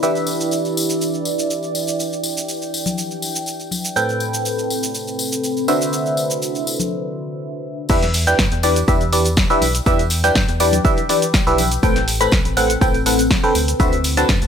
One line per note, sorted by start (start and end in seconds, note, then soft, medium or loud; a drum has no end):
0.00 3.93 E3 medium
0.00 3.93 D4 medium
0.00 4.65 E4 medium
0.00 3.93 G4 medium
0.00 3.93 B4 medium
0.00 4.65 D5 medium
0.00 3.93 E5 medium
0.00 1.38 B5 medium
0.00 tambourine soft
0.00 shaker medium
0.15 tambourine soft
0.15 shaker soft
0.27 tambourine medium
0.41 tambourine soft
0.41 shaker medium
0.46 5.68 G5 medium
0.51 tambourine soft
0.51 shaker medium
0.65 tambourine soft
0.65 shaker soft
0.77 tambourine medium
0.90 tambourine soft
0.90 shaker medium
1.01 tambourine soft
1.01 shaker medium
1.14 tambourine soft
1.14 shaker soft
1.25 tambourine medium
1.39 tambourine soft
1.39 shaker medium
1.50 tambourine soft
1.50 shaker medium
1.63 tambourine soft
1.63 shaker soft
1.75 tambourine medium
1.87 tambourine soft
1.87 shaker medium
2.00 tambourine soft
2.00 shaker medium
2.13 tambourine soft
2.13 shaker soft
2.23 tambourine medium
2.37 tambourine soft
2.37 shaker medium
2.48 tambourine soft
2.48 shaker medium
2.62 tambourine soft
2.62 shaker soft
2.74 tambourine medium
2.86 tambourine soft
2.86 high conga medium
2.86 shaker medium
2.98 tambourine soft
2.98 shaker medium
3.11 tambourine soft
3.11 shaker soft
3.22 tambourine medium
3.36 tambourine soft
3.36 shaker medium
3.46 tambourine soft
3.46 shaker medium
3.60 tambourine soft
3.60 shaker soft
3.71 tambourine medium
3.71 high conga medium
3.85 tambourine soft
3.85 shaker medium
3.96 5.65 A2 medium
3.96 5.65 C4 medium
3.96 6.91 C4 medium
3.96 5.65 A4 medium
3.96 5.65 B4 medium
3.96 5.66 G5 medium
3.96 tambourine soft
3.96 shaker medium
4.09 tambourine soft
4.09 shaker soft
4.20 tambourine medium
4.33 tambourine soft
4.33 shaker medium
4.45 6.57 A4 medium
4.45 tambourine soft
4.45 shaker medium
4.50 6.91 B5 medium
4.59 tambourine soft
4.59 shaker soft
4.70 tambourine medium
4.83 tambourine soft
4.83 shaker medium
4.95 tambourine soft
4.95 shaker medium
5.07 tambourine soft
5.07 shaker soft
5.19 tambourine medium
5.32 tambourine soft
5.32 shaker medium
5.43 tambourine soft
5.43 shaker medium
5.57 tambourine soft
5.57 shaker soft
5.68 7.87 D3 medium
5.68 7.87 D4 medium
5.68 7.87 F#4 medium
5.68 7.87 B4 medium
5.68 7.87 C5 medium
5.68 7.87 E5 medium
5.68 tambourine medium
5.82 tambourine soft
5.82 shaker medium
5.93 tambourine medium
5.93 shaker medium
6.06 tambourine soft
6.06 shaker soft
6.17 tambourine medium
6.30 tambourine soft
6.30 shaker medium
6.42 tambourine soft
6.42 shaker medium
6.55 tambourine soft
6.55 shaker soft
6.67 tambourine medium
6.80 tambourine soft
6.80 high conga medium
6.80 shaker medium
7.89 8.34 E2 loud
7.89 8.05 E3 loud
7.89 8.05 D4 medium
7.89 8.05 G4 medium
7.89 8.05 B4 medium
7.89 8.05 E5 loud
7.89 kick loud
7.89 crash loud
7.89 tambourine soft
7.89 shaker medium
8.02 snare soft
8.02 closed hi-hat medium
8.02 tambourine soft
8.02 shaker soft
8.14 open hi-hat loud
8.14 tambourine medium
8.27 8.41 E3 medium
8.27 8.41 D4 medium
8.27 8.41 G4 medium
8.27 8.41 B4 medium
8.27 8.41 G5 loud
8.27 closed hi-hat medium
8.27 tambourine soft
8.27 shaker medium
8.39 8.49 G2 medium
8.39 kick loud
8.39 snare loud
8.39 tambourine medium
8.39 shaker medium
8.52 8.84 E2 medium
8.52 closed hi-hat medium
8.52 tambourine soft
8.52 shaker soft
8.63 8.79 E3 medium
8.63 8.79 D4 medium
8.63 8.79 G4 medium
8.63 8.79 B4 medium
8.63 8.79 D5 loud
8.63 open hi-hat loud
8.63 tambourine loud
8.75 closed hi-hat medium
8.75 tambourine soft
8.75 shaker medium
8.88 9.45 E2 medium
8.88 9.03 E3 medium
8.88 9.03 D4 medium
8.88 9.03 G4 medium
8.88 9.03 B4 medium
8.88 9.03 E5 loud
8.88 13.55 G5 medium
8.88 kick loud
8.88 tambourine medium
8.88 shaker medium
9.01 closed hi-hat soft
9.01 tambourine soft
9.01 shaker soft
9.13 9.28 E3 medium
9.13 9.28 D4 medium
9.13 9.28 G4 medium
9.13 9.28 B4 medium
9.13 9.28 D5 medium
9.13 open hi-hat loud
9.13 tambourine medium
9.25 closed hi-hat medium
9.25 tambourine soft
9.25 shaker medium
9.37 kick loud
9.37 snare loud
9.37 tambourine medium
9.37 shaker medium
9.50 9.64 E3 loud
9.50 9.64 D4 medium
9.50 9.64 G4 medium
9.50 9.64 B4 medium
9.50 9.64 E5 loud
9.50 tambourine soft
9.50 shaker soft
9.62 9.81 B1 medium
9.62 open hi-hat loud
9.62 tambourine medium
9.75 closed hi-hat medium
9.75 tambourine soft
9.75 shaker medium
9.86 10.31 E2 loud
9.86 10.02 E3 loud
9.86 10.02 D4 medium
9.86 10.02 G4 medium
9.86 10.02 B4 medium
9.86 10.02 E5 loud
9.86 kick loud
9.86 tambourine medium
9.86 shaker medium
9.99 closed hi-hat medium
9.99 tambourine soft
9.99 shaker soft
10.10 open hi-hat loud
10.10 tambourine loud
10.24 10.38 E3 medium
10.24 10.38 D4 medium
10.24 10.38 G4 medium
10.24 10.38 B4 medium
10.24 10.38 G5 loud
10.24 snare soft
10.24 closed hi-hat medium
10.24 tambourine soft
10.24 shaker medium
10.35 10.45 G2 medium
10.35 kick loud
10.35 snare loud
10.35 tambourine medium
10.35 shaker medium
10.48 10.80 E2 medium
10.48 closed hi-hat medium
10.48 tambourine soft
10.48 shaker soft
10.60 10.75 E3 medium
10.60 10.75 D4 medium
10.60 10.75 G4 medium
10.60 10.75 B4 medium
10.60 10.75 D5 medium
10.60 open hi-hat loud
10.60 tambourine loud
10.73 closed hi-hat medium
10.73 tambourine soft
10.73 high conga medium
10.73 shaker medium
10.85 11.00 E3 medium
10.85 11.00 D4 medium
10.85 11.00 G4 medium
10.85 11.00 B4 medium
10.85 11.00 E5 loud
10.85 kick loud
10.85 tambourine medium
10.85 shaker medium
10.97 closed hi-hat soft
10.97 tambourine soft
10.97 shaker soft
11.09 11.25 E3 medium
11.09 11.25 D4 medium
11.09 11.25 G4 medium
11.09 11.25 B4 medium
11.09 11.25 D5 medium
11.09 open hi-hat loud
11.09 tambourine medium
11.22 closed hi-hat medium
11.22 tambourine soft
11.22 shaker medium
11.34 kick loud
11.34 snare loud
11.34 tambourine medium
11.34 shaker medium
11.47 11.79 B1 medium
11.47 11.61 E3 loud
11.47 11.61 D4 medium
11.47 11.61 G4 medium
11.47 11.61 B4 medium
11.47 11.61 E5 loud
11.47 tambourine soft
11.47 shaker soft
11.58 open hi-hat loud
11.58 tambourine loud
11.58 high conga medium
11.71 closed hi-hat medium
11.71 tambourine soft
11.71 shaker medium
11.83 12.28 A1 loud
11.83 11.98 A2 loud
11.83 11.98 C4 medium
11.83 14.44 C4 medium
11.83 11.98 A4 medium
11.83 11.98 B4 medium
11.83 11.98 G5 loud
11.83 kick loud
11.83 tambourine medium
11.83 shaker medium
11.96 snare soft
11.96 closed hi-hat medium
11.96 tambourine soft
11.96 shaker soft
12.08 open hi-hat loud
12.08 tambourine loud
12.21 12.35 A2 medium
12.21 12.35 C4 medium
12.21 12.35 A4 medium
12.21 12.35 B4 medium
12.21 12.35 B5 loud
12.21 closed hi-hat medium
12.21 tambourine soft
12.21 shaker medium
12.26 13.55 B4 medium
12.32 12.42 C2 medium
12.32 kick loud
12.32 snare loud
12.32 tambourine medium
12.32 shaker medium
12.45 12.77 A1 medium
12.45 closed hi-hat medium
12.45 tambourine soft
12.45 shaker soft
12.57 12.72 A2 medium
12.57 12.72 C4 medium
12.57 12.72 A4 medium
12.57 12.72 B4 medium
12.57 12.72 F#5 loud
12.57 open hi-hat loud
12.57 tambourine medium
12.70 closed hi-hat medium
12.70 tambourine soft
12.70 shaker medium
12.81 13.39 A1 medium
12.81 12.97 A2 medium
12.81 12.97 C4 medium
12.81 12.97 A4 medium
12.81 12.97 B4 medium
12.81 12.97 G5 loud
12.81 kick loud
12.81 tambourine medium
12.81 shaker medium
12.94 closed hi-hat soft
12.94 tambourine soft
12.94 shaker soft
13.06 13.21 A2 medium
13.06 13.21 C4 medium
13.06 13.21 A4 medium
13.06 13.21 B4 medium
13.06 13.21 F#5 medium
13.06 open hi-hat loud
13.06 tambourine loud
13.19 closed hi-hat medium
13.19 tambourine soft
13.19 shaker medium
13.31 kick loud
13.31 snare loud
13.31 tambourine medium
13.31 shaker medium
13.44 13.54 D3 loud
13.44 13.54 C4 medium
13.44 13.54 A4 medium
13.44 13.54 B4 medium
13.44 13.54 G5 loud
13.44 tambourine soft
13.44 shaker soft
13.55 13.74 D2 medium
13.55 14.47 E4 medium
13.55 open hi-hat loud
13.55 tambourine medium
13.68 closed hi-hat medium
13.68 tambourine soft
13.68 shaker medium
13.80 14.25 D2 loud
13.80 13.95 D3 loud
13.80 13.95 C4 medium
13.80 13.95 F#4 medium
13.80 13.95 B4 medium
13.80 13.95 E5 loud
13.80 kick loud
13.80 tambourine soft
13.80 shaker medium
13.92 closed hi-hat medium
13.92 tambourine soft
13.92 shaker soft
14.04 open hi-hat loud
14.04 tambourine loud
14.17 14.32 D3 medium
14.17 14.32 C4 medium
14.17 14.32 F#4 medium
14.17 14.32 B4 medium
14.17 14.32 A5 loud
14.17 snare soft
14.17 closed hi-hat medium
14.17 tambourine soft
14.17 shaker medium
14.29 14.39 F#2 medium
14.29 kick loud
14.29 snare loud
14.29 tambourine medium
14.29 shaker medium
14.41 14.47 D2 medium
14.41 closed hi-hat soft
14.41 tambourine soft
14.41 shaker soft